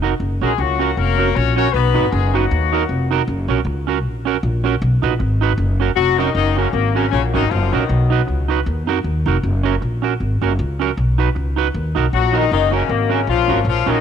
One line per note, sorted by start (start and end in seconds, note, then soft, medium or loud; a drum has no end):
0.00 0.14 F1 medium
0.00 0.12 D#4 medium
0.00 0.13 F#4 medium
0.04 0.13 A#4 medium
0.20 0.38 F#1 loud
0.41 0.56 A#1 medium
0.41 0.58 G#3 medium
0.41 0.51 C#4 medium
0.41 0.52 F#4 medium
0.41 0.58 G#4 medium
0.41 0.52 A#4 medium
0.58 0.91 C#2 loud
0.58 0.97 F#3 medium
0.58 0.96 A#3 medium
0.58 0.96 C#4 medium
0.58 0.97 F#4 loud
0.58 muted clean electric guitar stroke soft
0.79 0.89 C#4 medium
0.79 0.90 F#4 medium
0.79 0.90 A#4 medium
0.96 1.30 F1 medium
0.96 1.35 A#3 loud
0.96 1.33 C#4 medium
0.96 1.71 F#4 medium
0.96 1.35 A#4 loud
1.18 1.28 C#4 medium
1.18 1.29 F#4 medium
1.18 1.29 A#4 medium
1.33 1.69 A#1 loud
1.33 1.54 C#4 loud
1.33 1.54 C#5 loud
1.55 1.72 C#4 loud
1.55 1.66 C#4 medium
1.55 1.67 F#4 medium
1.55 1.68 A#4 medium
1.55 1.72 C#5 loud
1.72 1.92 B1 loud
1.72 2.12 B3 loud
1.72 2.35 D#4 medium
1.72 2.33 F#4 medium
1.72 2.12 B4 loud
1.94 2.10 G#1 medium
1.94 2.05 D#4 medium
1.94 2.05 F#4 medium
1.94 2.06 B4 medium
2.11 2.45 F#1 loud
2.11 2.32 G#3 medium
2.11 2.32 G#4 loud
2.11 muted clean electric guitar stroke soft
2.34 3.11 F#3 medium
2.34 3.08 A#3 medium
2.34 2.44 D#4 medium
2.34 3.08 D#4 medium
2.34 3.11 F#4 medium
2.34 2.44 F#4 loud
2.34 2.45 B4 medium
2.51 2.84 D#2 loud
2.73 2.82 D#4 medium
2.73 2.83 F#4 medium
2.73 2.83 A#4 loud
2.89 3.22 F1 loud
3.11 3.21 D#4 medium
3.11 3.21 F#4 loud
3.11 3.21 A#4 loud
3.28 3.46 F#1 loud
3.48 3.63 A#1 medium
3.48 3.59 C#4 medium
3.48 3.59 F#4 loud
3.48 3.60 A#4 medium
3.65 4.04 C#2 loud
3.65 muted clean electric guitar stroke medium
3.87 3.97 C#4 medium
3.87 3.98 F#4 medium
3.87 3.98 A#4 medium
4.04 4.37 A#1 loud
4.25 4.36 C#4 medium
4.25 4.36 F#4 medium
4.25 4.37 A#4 loud
4.43 4.76 A#1 loud
4.64 4.74 C#4 loud
4.64 4.74 F#4 medium
4.64 4.75 A#4 medium
4.82 5.00 B1 loud
5.02 5.17 A#1 loud
5.02 5.12 D#4 medium
5.02 5.13 F#4 medium
5.02 5.13 B4 medium
5.19 5.53 G#1 loud
5.19 muted clean electric guitar stroke soft
5.41 5.51 D#4 medium
5.41 5.52 F#4 medium
5.41 5.52 B4 loud
5.58 5.91 F#1 loud
5.80 5.90 C#4 medium
5.80 5.90 F#4 medium
5.80 5.91 A#4 loud
5.96 6.29 F1 loud
5.96 6.17 F#3 loud
5.96 6.17 F#4 loud
6.18 6.33 D#3 medium
6.18 6.28 C#4 medium
6.18 6.33 D#4 loud
6.18 6.29 F#4 loud
6.18 6.29 A#4 loud
6.34 6.68 F#1 loud
6.34 6.55 D#3 loud
6.34 7.08 F#3 medium
6.34 6.72 A#3 medium
6.34 6.55 D#4 loud
6.57 6.73 C#3 medium
6.57 6.66 C#4 medium
6.57 6.73 C#4 medium
6.57 6.67 F#4 medium
6.57 6.67 A#4 medium
6.73 7.06 G#1 medium
6.73 6.94 A#3 medium
6.73 muted clean electric guitar stroke soft
6.95 7.10 C#3 medium
6.95 7.05 C#4 medium
6.95 7.10 C#4 medium
6.95 7.05 F#4 medium
6.95 7.06 A#4 medium
7.11 7.31 A#1 loud
7.11 7.21 C#3 medium
7.11 7.71 F#3 medium
7.11 7.85 A#3 medium
7.11 7.21 C#4 loud
7.34 7.49 G#1 medium
7.34 7.50 D#3 medium
7.34 7.43 C#4 medium
7.34 7.50 D#4 loud
7.34 7.44 F#4 medium
7.34 7.44 A#4 loud
7.50 7.69 F#1 loud
7.50 7.72 F3 medium
7.50 7.72 F4 loud
7.72 7.87 A#1 medium
7.72 8.11 D#3 medium
7.72 8.45 F#3 medium
7.72 8.45 B3 medium
7.72 7.82 C#4 medium
7.72 8.11 D#4 medium
7.72 7.83 F#4 medium
7.72 7.83 A#4 loud
7.89 8.22 B1 loud
8.10 8.20 D#4 medium
8.10 8.21 F#4 medium
8.10 8.21 B4 medium
8.27 8.61 C#2 medium
8.27 muted clean electric guitar stroke soft
8.48 8.59 D#4 medium
8.48 8.59 F#4 medium
8.48 8.60 B4 loud
8.66 8.87 D#2 loud
8.87 9.02 F2 medium
8.87 8.97 D#4 medium
8.87 8.98 F#4 loud
8.87 8.98 A#4 loud
9.04 9.23 D#2 loud
9.26 9.40 F1 medium
9.26 9.36 D#4 medium
9.26 9.36 F#4 medium
9.26 9.37 A#4 medium
9.43 9.76 F#1 loud
9.63 9.74 C#4 medium
9.63 9.74 F#4 medium
9.63 9.75 A#4 medium
9.81 10.15 A#1 medium
9.81 muted clean electric guitar stroke soft
10.02 10.12 C#4 medium
10.02 10.13 F#4 medium
10.02 10.13 A#4 medium
10.20 10.38 G#1 medium
10.41 10.56 F#1 medium
10.41 10.51 C#4 medium
10.41 10.52 F#4 medium
10.41 10.52 A#4 medium
10.59 10.91 C#2 loud
10.80 10.89 C#4 medium
10.80 10.90 F#4 loud
10.80 10.90 A#4 loud
10.97 11.30 B1 loud
11.18 11.28 D#4 medium
11.18 11.28 F#4 medium
11.18 11.29 B4 medium
11.35 11.68 C#2 loud
11.35 muted clean electric guitar stroke soft
11.56 11.66 D#4 medium
11.56 11.67 F#4 medium
11.56 11.67 B4 loud
11.74 11.92 D#2 loud
11.95 12.10 B1 medium
11.95 12.05 D#4 medium
11.95 12.05 F#4 medium
11.95 12.06 A#4 medium
12.13 12.45 A#1 loud
12.13 12.33 F#3 medium
12.13 12.33 F#4 loud
12.33 12.51 D#3 loud
12.33 12.43 D#4 medium
12.33 12.51 D#4 loud
12.33 12.43 F#4 medium
12.33 12.44 A#4 loud
12.51 12.84 F#1 loud
12.51 12.72 D#3 loud
12.51 13.24 F#3 medium
12.51 12.89 A#3 medium
12.51 12.72 D#4 loud
12.71 12.89 C#3 medium
12.71 12.81 C#4 medium
12.71 12.89 C#4 medium
12.71 12.82 F#4 medium
12.71 12.82 A#4 medium
12.88 13.22 G#1 loud
12.88 13.11 A#3 loud
12.88 muted clean electric guitar stroke soft
13.10 13.27 C#3 medium
13.10 13.20 C#4 medium
13.10 13.27 C#4 medium
13.10 13.20 F#4 medium
13.10 13.21 A#4 medium
13.27 13.46 A#1 loud
13.27 13.64 F3 loud
13.27 14.01 A#3 medium
13.27 14.01 C#4 medium
13.27 13.64 F4 loud
13.48 13.63 G#1 medium
13.48 13.58 C#4 medium
13.48 13.59 F#4 loud
13.48 13.59 A#4 loud
13.65 13.83 A#1 loud
13.65 13.87 F3 loud
13.65 13.87 F4 loud
13.86 14.01 A#1 medium
13.86 14.01 D#3 loud
13.86 14.01 F#3 medium
13.86 14.01 B3 medium
13.86 13.96 C#4 medium
13.86 14.01 D#4 loud
13.86 13.97 F#4 medium
13.86 13.97 A#4 medium